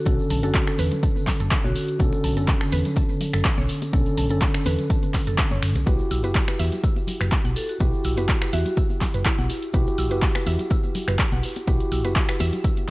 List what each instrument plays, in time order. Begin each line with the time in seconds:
Already playing: vibraphone F#4
0.06 fingered electric bass B1, tine electric piano D3 C#4 A4, synth arpeggio sound A4, kick, closed hi-hat, muted conga, high conga, shaker
0.19 shaker
0.30 fingered electric bass B1, synth arpeggio sound A5, open hi-hat, shaker
0.42 fingered electric bass F#1, tine electric piano D3 C#4 A4, vibraphone F#4, synth arpeggio sound A4, closed hi-hat, muted conga, high conga, shaker
0.54 kick, clap, closed hi-hat, shaker
0.67 synth arpeggio sound A4, finger snap, shaker
0.78 fingered electric bass E2, synth arpeggio sound B4, open hi-hat, high conga, shaker
0.91 closed hi-hat, muted conga, low conga, shaker
1.03 synth arpeggio sound A5, kick, closed hi-hat, shaker
1.16 high conga, shaker
1.27 kick, clap, open hi-hat, muted conga, low conga, shaker
1.40 fingered electric bass F#1, synth arpeggio sound A4, closed hi-hat, shaker
1.51 finger snap, kick, clap, closed hi-hat, shaker
1.64 fingered electric bass B1, vibraphone F#4, synth arpeggio sound C#5, high conga, shaker
1.75 open hi-hat, muted conga, shaker
1.88 closed hi-hat, shaker
1.99 fingered electric bass B1, tine electric piano D3 C#4 A4, synth arpeggio sound A4, kick, closed hi-hat, high conga, shaker
2.12 muted conga, shaker
2.24 fingered electric bass B1, synth arpeggio sound A5, open hi-hat, shaker
2.36 fingered electric bass F#1, tine electric piano D3 C#4 A4, synth arpeggio sound A4, closed hi-hat, high conga, shaker
2.48 kick, clap, closed hi-hat, shaker
2.61 synth arpeggio sound A4, finger snap, muted conga, shaker
2.72 fingered electric bass E2, synth arpeggio sound B4, open hi-hat, high conga, shaker
2.85 closed hi-hat, low conga, shaker
2.96 synth arpeggio sound A5, kick, closed hi-hat, muted conga, shaker
3.09 high conga, shaker
3.21 open hi-hat, low conga, shaker
3.33 fingered electric bass F#1, synth arpeggio sound A4, finger snap, closed hi-hat, shaker
3.45 kick, clap, closed hi-hat, muted conga, shaker
3.57 fingered electric bass B1, synth arpeggio sound C#5, high conga, shaker
3.69 open hi-hat, shaker
3.82 closed hi-hat, muted conga, shaker
3.93 fingered electric bass B1, tine electric piano D3 C#4 A4, synth arpeggio sound A4, kick, closed hi-hat, high conga, shaker
4.06 closed hi-hat, shaker
4.17 fingered electric bass B1, synth arpeggio sound A5, open hi-hat, shaker
4.29 fingered electric bass F#1, tine electric piano D3 C#4 A4, synth arpeggio sound A4, closed hi-hat, muted conga, high conga, shaker
4.41 kick, clap, closed hi-hat, shaker
4.54 synth arpeggio sound A4, finger snap, shaker
4.66 fingered electric bass E2, synth arpeggio sound B4, open hi-hat, muted conga, high conga, shaker
4.78 closed hi-hat, low conga, shaker
4.90 synth arpeggio sound A5, kick, closed hi-hat, shaker
5.03 closed hi-hat, high conga, shaker
5.14 kick, clap, open hi-hat, muted conga, low conga, shaker
5.27 fingered electric bass F#1, synth arpeggio sound A4, closed hi-hat, shaker
5.38 finger snap, kick, clap, closed hi-hat, shaker
5.51 fingered electric bass F#1, synth arpeggio sound C#5, muted conga, high conga, shaker
5.62 fingered electric bass F#1, finger snap, open hi-hat, shaker
5.75 fingered electric bass B1, closed hi-hat, shaker
5.86 fingered electric bass B1, tine electric piano E4 F#4 G4, synth arpeggio sound B4, kick, closed hi-hat, high conga, shaker
5.98 shaker
6.11 fingered electric bass B1, synth arpeggio sound E6, open hi-hat, muted conga, shaker
6.23 fingered electric bass F#1, tine electric piano E4 F#4 G4, synth arpeggio sound B4, closed hi-hat, high conga, shaker
6.35 kick, clap, closed hi-hat, shaker
6.48 synth arpeggio sound B4, finger snap, muted conga, shaker
6.59 fingered electric bass E2, synth arpeggio sound E5, open hi-hat, high conga, shaker
6.72 closed hi-hat, low conga, shaker
6.84 synth arpeggio sound E6, kick, closed hi-hat, shaker
6.96 muted conga, high conga, shaker
7.07 open hi-hat, low conga, shaker
7.20 fingered electric bass F#1, synth arpeggio sound B4, finger snap, closed hi-hat, shaker
7.31 kick, clap, closed hi-hat, muted conga, shaker
7.44 fingered electric bass B1, synth arpeggio sound F#5, high conga, shaker
7.56 vibraphone A4, open hi-hat, shaker
7.69 vibraphone F#4, closed hi-hat, shaker
7.80 fingered electric bass B1, tine electric piano E4 F#4 G4, synth arpeggio sound B4, kick, closed hi-hat, muted conga, high conga, shaker
7.93 shaker
8.04 fingered electric bass B1, synth arpeggio sound E6, open hi-hat, shaker
8.16 fingered electric bass F#1, tine electric piano E4 F#4 G4, synth arpeggio sound B4, closed hi-hat, muted conga, high conga, shaker
8.29 kick, clap, closed hi-hat, shaker
8.41 synth arpeggio sound B4, finger snap, shaker
8.53 fingered electric bass E2, vibraphone F#4, synth arpeggio sound E5, open hi-hat, high conga, shaker
8.65 closed hi-hat, muted conga, low conga, shaker
8.77 synth arpeggio sound E6, kick, closed hi-hat, shaker
8.90 high conga, shaker
9.01 kick, clap, open hi-hat, muted conga, low conga, shaker
9.14 fingered electric bass F#1, synth arpeggio sound B4, closed hi-hat, shaker
9.25 vibraphone E4, finger snap, kick, clap, closed hi-hat, shaker
9.38 fingered electric bass B1, synth arpeggio sound F#5, high conga, shaker
9.50 open hi-hat, muted conga, shaker
9.62 closed hi-hat, shaker
9.73 fingered electric bass B1, tine electric piano E4 F#4 G4, synth arpeggio sound B4, kick, closed hi-hat, high conga, shaker
9.87 muted conga, shaker
9.98 fingered electric bass B1, synth arpeggio sound E6, open hi-hat, shaker
10.10 fingered electric bass F#1, tine electric piano E4 F#4 G4, synth arpeggio sound B4, closed hi-hat, high conga, shaker
10.22 kick, clap, closed hi-hat, shaker
10.35 synth arpeggio sound B4, finger snap, muted conga, shaker
10.46 fingered electric bass E2, synth arpeggio sound E5, open hi-hat, high conga, shaker
10.59 closed hi-hat, low conga, shaker
10.70 synth arpeggio sound E6, kick, closed hi-hat, muted conga, shaker
10.83 high conga, shaker
10.95 open hi-hat, low conga, shaker
11.08 fingered electric bass F#1, synth arpeggio sound B4, finger snap, closed hi-hat, shaker
11.19 kick, clap, closed hi-hat, muted conga, shaker
11.31 fingered electric bass B1, synth arpeggio sound F#5, high conga, shaker
11.43 open hi-hat, shaker
11.56 closed hi-hat, muted conga, shaker
11.67 fingered electric bass B1, tine electric piano E4 F#4 G4, synth arpeggio sound B4, kick, closed hi-hat, high conga, shaker
11.80 closed hi-hat, shaker
11.92 fingered electric bass B1, synth arpeggio sound E6, open hi-hat, shaker
12.04 fingered electric bass F#1, tine electric piano E4 F#4 G4, synth arpeggio sound B4, closed hi-hat, muted conga, high conga, shaker
12.16 kick, clap, closed hi-hat, shaker
12.29 synth arpeggio sound B4, finger snap, closed hi-hat, shaker
12.40 fingered electric bass E2, synth arpeggio sound E5, open hi-hat, muted conga, high conga, shaker
12.53 closed hi-hat, low conga, shaker
12.64 synth arpeggio sound E6, kick, closed hi-hat, shaker
12.76 closed hi-hat, high conga, shaker